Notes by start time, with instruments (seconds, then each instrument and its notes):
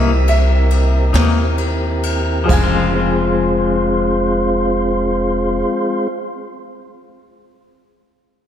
Already playing: upright bass C2, upright piano A#3 E4 D#5 E5, tonewheel organ C4 E4 G4 A#4, clean electric guitar D#4
0.28 upright piano E5, ride
0.71 ride
1.13 upright bass D#2, clean electric guitar C3 E3 A#3 D#4, snare, ride
1.58 ride
2.03 ride
2.44 clean electric guitar F3, upright piano G#4 C5
2.48 upright bass F1, tonewheel organ C#3 G#3 F4 C5, clean electric guitar G#3, upright piano F5, kick, crash
2.53 upright piano G#5
2.57 clean electric guitar C4
2.63 clean electric guitar F4
2.95 tonewheel organ G#3 C4 F4 C5